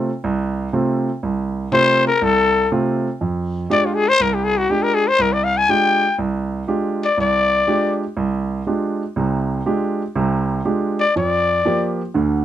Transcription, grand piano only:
0.24 0.67 C2 medium
0.73 1.08 C3 medium
0.73 1.08 A3 medium
0.73 1.08 C4 soft
0.73 1.08 F4 medium
1.23 1.66 C2 medium
1.72 2.07 C3 medium
1.72 2.07 A3 medium
1.72 2.07 C4 medium
1.72 2.08 F4 medium
2.22 2.65 C2 medium
2.72 3.06 C3 medium
2.72 3.06 A3 medium
2.72 3.07 C4 medium
2.72 3.07 F4 medium
3.21 3.64 F2 medium
3.70 4.05 G#3 medium
3.70 4.05 D4 soft
3.70 4.05 F4 soft
3.70 4.05 G4 medium
4.20 4.63 C2 medium
4.69 5.05 G#3 medium
4.69 5.05 D4 medium
4.69 5.05 F4 soft
4.69 5.05 G4 medium
5.19 5.62 C2 medium
5.69 6.04 G#3 medium
5.69 6.04 D4 medium
5.69 6.04 F4 medium
5.69 6.04 G4 medium
6.19 6.62 C2 medium
6.68 7.03 G#3 medium
6.68 7.03 D4 soft
6.68 7.03 F4 medium
6.68 7.03 G4 medium
7.18 7.61 C2 medium
7.67 8.03 G#3 medium
7.67 8.03 D4 medium
7.67 8.03 F4 soft
7.67 8.03 G4 medium
8.17 8.60 C2 medium
8.67 9.02 G#3 medium
8.67 9.02 D4 medium
8.67 9.02 F4 soft
8.67 9.02 G4 medium
9.16 9.60 C2 medium
9.16 9.60 C3 medium
9.66 10.01 G#3 medium
9.66 10.01 D4 medium
9.66 10.01 F4 medium
9.66 10.02 G4 medium
10.16 10.59 C2 medium
10.16 10.59 C3 medium
10.65 11.01 G#3 medium
10.65 11.00 D4 soft
10.65 11.01 F4 medium
10.65 11.01 G4 medium
11.16 11.59 F2 medium
11.16 11.59 F3 medium
11.65 12.01 F3 medium
11.65 12.01 A#3 medium
11.65 12.01 F4 soft
11.65 12.01 G4 medium
12.14 12.45 D2 medium
12.14 12.45 D3 medium

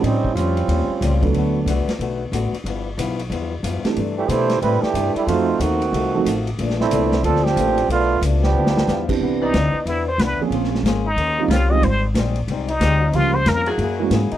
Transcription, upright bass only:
0.03 0.35 A2 medium
0.35 0.67 F2 medium
0.68 0.88 D#2 medium
0.89 muted upright bass stroke soft
1.01 1.32 C#2 medium
1.33 1.65 D2 medium
1.66 1.86 C2 medium
1.87 muted upright bass stroke soft
1.99 2.31 B1 medium
2.32 2.51 A1 medium
2.52 muted upright bass stroke soft
2.64 2.97 G1 medium
2.98 3.29 B1 medium
3.30 3.62 E2 medium
3.63 3.82 F#2 medium
3.84 muted upright bass stroke soft
3.96 4.28 G2 medium
4.28 4.61 B2 medium
4.62 4.81 A2 medium
4.82 muted upright bass stroke soft
4.94 5.13 G2 medium
5.15 muted upright bass stroke soft
5.27 5.59 F2 medium
5.60 5.92 D#2 medium
5.93 6.25 C2 medium
6.25 6.57 A1 medium
6.59 6.90 A#1 medium
6.91 7.23 C2 medium
7.23 7.55 D2 medium
7.56 7.88 A1 medium
7.88 8.21 B1 medium
8.21 8.54 C#2 medium
8.55 8.87 D2 medium
8.87 9.19 E2 medium
9.21 9.53 C2 medium
9.53 9.73 D2 medium
9.74 muted upright bass stroke soft
9.85 10.18 E2 medium
10.18 10.38 C2 medium
10.39 muted upright bass stroke soft
10.50 10.82 A#1 medium
10.83 11.16 G#1 medium
11.16 11.48 D#2 medium
11.48 11.81 C2 medium
11.82 12.14 G#1 medium
12.14 12.47 A#1 medium
12.48 12.79 C2 medium
12.80 13.12 D2 medium
13.12 13.45 C#2 medium
13.45 13.77 F2 medium
13.78 14.10 F#2 medium
14.10 14.30 G#2 medium
14.32 muted upright bass stroke soft

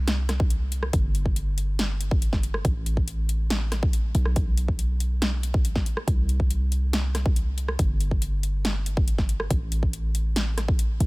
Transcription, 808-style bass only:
0.00 0.91 C2 medium
0.93 2.63 G1 medium
2.65 4.13 A1 medium
4.15 5.84 B1 medium
6.08 7.77 C2 medium
7.79 9.48 G1 medium
9.50 10.98 A1 medium
11.00 11.07 B1 medium

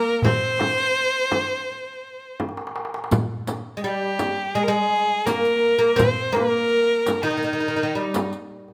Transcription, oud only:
0.00 0.25 A#3 medium
0.24 2.36 C4 medium
3.77 3.84 G#3 soft
3.84 4.55 G3 medium
4.55 4.67 G#3 medium
4.68 5.26 G#3 medium
5.27 5.77 A#3 medium
5.79 5.96 A#3 medium
5.96 6.35 C4 medium
6.33 7.26 A#3 medium
7.23 7.29 D#3 medium
7.30 7.36 D#3 soft
7.37 7.43 D#3 soft
7.44 7.52 D#3 soft
7.53 7.59 D#3 soft
7.60 7.67 D#3 soft
7.68 7.75 D#3 soft
7.76 7.82 D#3 soft
7.83 7.91 D#3 soft
7.95 8.29 G3 soft

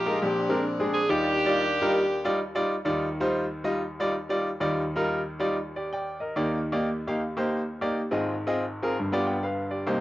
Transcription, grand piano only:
0.00 0.18 A#1 medium
0.00 0.18 A#2 medium
0.06 0.22 G#3 medium
0.06 0.22 D#4 medium
0.06 0.22 F4 medium
0.06 0.23 A#4 medium
0.22 1.06 A#1 medium
0.22 1.06 A#2 medium
0.49 0.62 G#3 medium
0.49 0.62 C4 medium
0.49 0.62 D4 medium
0.49 0.62 A#4 medium
0.80 0.98 G#3 medium
0.80 0.98 C4 medium
0.80 0.98 D4 medium
0.80 0.98 G#4 medium
1.09 2.81 D#2 medium
1.09 2.81 D#3 medium
1.09 1.31 G3 medium
1.09 1.31 D#4 medium
1.09 1.31 F4 medium
1.09 1.31 D5 medium
1.45 1.61 G3 medium
1.45 1.61 D#4 medium
1.45 1.61 F4 medium
1.45 1.61 D5 medium
1.81 1.98 G3 medium
1.81 1.99 D#4 medium
1.81 1.99 F4 medium
1.81 1.99 A#4 medium
2.25 2.37 G3 medium
2.25 2.38 D#4 medium
2.25 2.38 F4 medium
2.25 2.38 D5 medium
2.55 2.73 G3 medium
2.55 2.73 D#4 medium
2.55 2.73 F4 medium
2.55 2.73 D5 medium
2.85 4.56 D#2 medium
2.85 4.56 D#3 medium
2.85 3.06 G3 medium
2.85 3.06 D#4 medium
2.85 3.06 F4 medium
2.85 3.07 D5 medium
3.20 3.43 G3 medium
3.20 3.43 D#4 medium
3.20 3.44 F4 medium
3.20 3.44 C5 medium
3.64 3.80 G3 medium
3.64 3.80 D#4 medium
3.64 3.80 F4 medium
3.64 3.80 D#5 medium
4.00 4.13 G3 medium
4.00 4.13 D#4 medium
4.00 4.13 F4 medium
4.00 4.13 D5 medium
4.29 4.48 G3 medium
4.29 4.48 D#4 medium
4.29 4.49 F4 medium
4.29 4.48 D5 medium
4.60 6.32 D#2 medium
4.60 6.32 D#3 medium
4.60 4.82 G3 medium
4.60 4.82 D#4 medium
4.60 4.82 F4 medium
4.60 4.82 D5 medium
4.96 5.19 G3 medium
4.96 5.19 D#4 medium
4.96 5.19 F4 medium
4.96 5.19 A#4 medium
5.39 5.55 G3 medium
5.39 5.56 D#4 medium
5.39 5.56 F4 medium
5.39 5.56 D5 medium
5.76 5.92 G4 soft
5.76 5.91 D5 medium
5.93 6.19 D5 medium
5.93 6.19 G5 medium
6.20 6.62 A#4 soft
6.20 6.62 D#5 medium
6.36 8.08 D#2 medium
6.36 8.08 D#3 medium
6.36 6.57 A#3 medium
6.36 6.57 D#4 medium
6.36 6.58 G4 medium
6.36 6.58 D5 medium
6.72 6.88 A#3 medium
6.72 6.88 D#4 medium
6.72 6.88 G4 medium
6.72 6.88 D5 medium
7.07 7.20 A#3 medium
7.07 7.20 D#4 medium
7.07 7.20 G4 medium
7.07 7.20 F5 medium
7.37 7.60 A#3 medium
7.37 7.60 D#4 medium
7.37 7.60 G4 medium
7.37 7.60 C5 medium
7.81 8.00 A#3 medium
7.81 8.00 D#4 medium
7.81 8.00 G4 medium
7.81 8.00 D5 medium
8.11 8.95 G#1 medium
8.11 8.95 G#2 medium
8.11 8.33 C4 medium
8.11 8.33 F4 medium
8.11 8.33 G#4 medium
8.11 8.33 D#5 medium
8.47 8.63 C4 medium
8.47 8.63 F4 medium
8.47 8.63 G#4 medium
8.47 8.63 D#5 medium
8.83 8.95 C4 medium
8.83 8.96 F4 medium
8.83 8.96 G#4 medium
8.83 8.96 A#4 medium
8.99 9.83 G1 medium
8.99 9.83 G2 medium
9.12 9.35 B3 medium
9.12 9.36 F4 medium
9.12 9.27 G4 medium
9.12 9.26 D5 medium
9.27 9.43 D5 medium
9.27 9.42 G5 medium
9.43 9.70 B4 medium
9.43 9.70 F5 medium
9.71 9.86 G4 soft
9.71 10.01 D5 medium
9.87 10.01 C2 medium
9.87 10.01 C3 medium
9.87 10.01 A#3 medium
9.87 10.01 D#4 medium
9.87 10.01 G4 medium
9.87 10.01 C5 medium

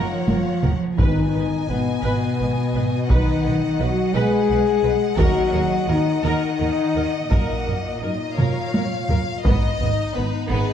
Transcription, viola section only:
0.00 0.26 A#4 soft
0.28 0.36 A#4 soft
0.63 0.71 A#4 soft
0.99 1.32 B4 medium
1.33 1.41 B4 soft
1.69 1.77 B4 soft
2.03 2.37 B4 medium
2.39 2.47 B4 soft
2.75 2.83 B4 soft
3.10 3.42 B4 medium
3.45 3.53 B4 soft
3.80 3.88 B4 soft
4.15 4.47 B4 medium
4.50 4.58 B4 medium
4.83 4.91 B4 medium
5.18 5.50 A#4 medium
5.53 5.61 A#4 medium
5.89 5.97 A#4 medium
6.23 6.57 A#4 medium
6.60 6.68 A#4 soft
6.96 7.04 A#4 soft
7.31 7.64 A#4 soft
7.66 7.74 A#4 soft
8.02 8.10 A#4 soft
8.37 8.71 A#4 soft
8.73 8.81 A#4 soft
9.10 9.18 A#4 soft
10.50 10.73 G#4 medium

